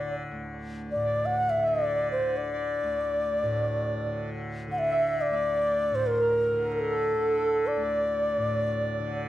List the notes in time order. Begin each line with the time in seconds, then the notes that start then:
Already playing: D2 A2 D3 D5
0.31 D2
0.91 A2 D5
1.04 D5
1.26 F#5
1.39 F#5
1.50 E5
1.57 D3
1.62 E5
1.68 D5
1.83 D5
2.12 C5
2.19 D3
2.37 D5
2.52 D5
2.83 D2
3.43 A2
4.06 D3
4.68 D3 F#5
4.78 E5
4.91 E5
5.21 D5
5.30 D2 D5
5.91 A2 C5
6.07 A#4 C5
6.19 A#4
6.53 D3
6.71 A#4
6.79 A4
6.91 A4
7.14 D3
7.67 D5
7.76 D2 D5
8.38 A2
9.00 D3